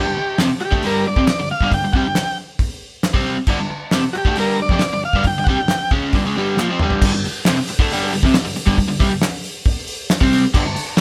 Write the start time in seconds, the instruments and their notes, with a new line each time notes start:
Already playing: transistor combo organ G4
0.07 overdriven electric guitar G2 D3
0.17 muted overdriven electric guitar stroke
0.38 overdriven electric guitar F2 C3, snare, clap, open hi-hat
0.51 muted overdriven electric guitar stroke
0.61 transistor combo organ F#4, muted overdriven electric guitar stroke, clap
0.65 transistor combo organ G4
0.72 overdriven electric guitar D3 A3, kick
0.83 overdriven electric guitar G2 D3 G3, transistor combo organ A#4, open hi-hat
1.07 overdriven electric guitar G2 D3, transistor combo organ D5
1.16 overdriven electric guitar F2 C3, kick
1.27 muted overdriven electric guitar stroke, snare, clap, open hi-hat
1.40 overdriven electric guitar G2 D3
1.51 transistor combo organ F5, muted overdriven electric guitar stroke
1.61 overdriven electric guitar G2 D3, kick
1.72 overdriven electric guitar G2 D3, transistor combo organ G5, kick, open hi-hat
1.84 overdriven electric guitar G2 D3
1.93 overdriven electric guitar C3 G3, transistor combo organ F#5, kick
1.97 transistor combo organ G5
2.07 overdriven electric guitar G2 D3
2.15 snare, clap, open hi-hat
2.59 kick, open hi-hat
3.03 snare, clap, open hi-hat
3.14 overdriven electric guitar C3 G3 C4, kick
3.38 muted overdriven electric guitar stroke
3.47 overdriven electric guitar G2 D3, kick, crash
3.60 overdriven electric guitar G2 D3
3.71 muted overdriven electric guitar stroke
3.91 overdriven electric guitar F2 C3, snare, clap, open hi-hat
4.04 muted overdriven electric guitar stroke
4.13 transistor combo organ F#4, muted overdriven electric guitar stroke, clap
4.18 transistor combo organ G4
4.25 overdriven electric guitar D3 A3, kick
4.36 overdriven electric guitar G2 D3 G3, open hi-hat
4.40 transistor combo organ A#4
4.59 overdriven electric guitar G2 D3, transistor combo organ D5
4.69 overdriven electric guitar F2 C3, kick
4.79 muted overdriven electric guitar stroke, snare, clap, open hi-hat
4.93 overdriven electric guitar G2 D3
5.04 transistor combo organ F5, muted overdriven electric guitar stroke
5.13 overdriven electric guitar G2 D3, kick
5.24 overdriven electric guitar G2 D3, transistor combo organ G5, kick, open hi-hat
5.38 overdriven electric guitar G2 D3
5.44 overdriven electric guitar C3, transistor combo organ F#5, kick
5.49 overdriven electric guitar G3, transistor combo organ G5
5.59 overdriven electric guitar G2 D3
5.68 snare, clap, open hi-hat
5.91 overdriven electric guitar C#3 G#3 C#4, kick
6.13 overdriven electric guitar G2 D3, kick, open hi-hat
6.25 overdriven electric guitar C#3 G#3
6.36 overdriven electric guitar G2 D3 G3
6.57 overdriven electric guitar A#2 F3, snare, clap
6.70 overdriven electric guitar F3 C4
6.79 overdriven electric guitar G2 D3 G3, mid tom
6.90 floor tom
7.02 overdriven electric guitar G2 D3, kick, crash
7.14 overdriven electric guitar G2 D3
7.24 muted overdriven electric guitar stroke, open hi-hat
7.45 overdriven electric guitar F2 C3, snare, clap, open hi-hat
7.59 muted overdriven electric guitar stroke
7.67 muted overdriven electric guitar stroke, open hi-hat
7.79 overdriven electric guitar D3 A3, kick
7.90 overdriven electric guitar G2 D3 G3, open hi-hat
8.12 overdriven electric guitar G2 D3, open hi-hat
8.23 overdriven electric guitar F2 C3, kick
8.34 muted overdriven electric guitar stroke, snare, clap, open hi-hat
8.45 overdriven electric guitar G2 D3
8.56 muted overdriven electric guitar stroke, open hi-hat
8.66 overdriven electric guitar G2 D3, kick
8.78 overdriven electric guitar G2 D3, kick, open hi-hat
8.88 overdriven electric guitar G2 D3
9.00 overdriven electric guitar C3 G3, kick, open hi-hat
9.11 overdriven electric guitar G2 D3
9.21 snare, clap, open hi-hat
9.43 open hi-hat
9.65 kick, open hi-hat
9.87 open hi-hat
10.10 snare, clap, open hi-hat
10.21 overdriven electric guitar C3 G3 C4, kick
10.33 open hi-hat
10.43 muted overdriven electric guitar stroke
10.54 overdriven electric guitar G2 D3, kick, crash
10.65 overdriven electric guitar G2 D3
10.76 muted overdriven electric guitar stroke, open hi-hat
10.97 overdriven electric guitar F2, snare, open hi-hat